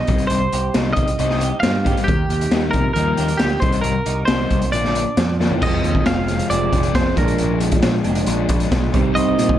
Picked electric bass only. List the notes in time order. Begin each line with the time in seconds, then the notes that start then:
0.09 C2
0.31 C2
0.53 C2
0.76 C2
0.97 C2
1.19 C2
1.63 G2
2.08 D#2
2.29 D#2
2.53 D#2
2.74 C3
2.96 D#2
3.19 D#2
3.40 D2
3.62 C2
3.84 C2
4.07 C2
4.29 C2
4.51 C2
4.72 A#1
5.18 F2
5.62 F1
5.83 D#2
6.06 F1
6.51 F1
6.73 F1
6.94 F1
7.17 A#1
7.40 A#1
7.84 A#1
8.05 F1
8.27 A#1
8.49 A#1
8.72 B1
8.94 C2
9.15 C2
9.38 A#2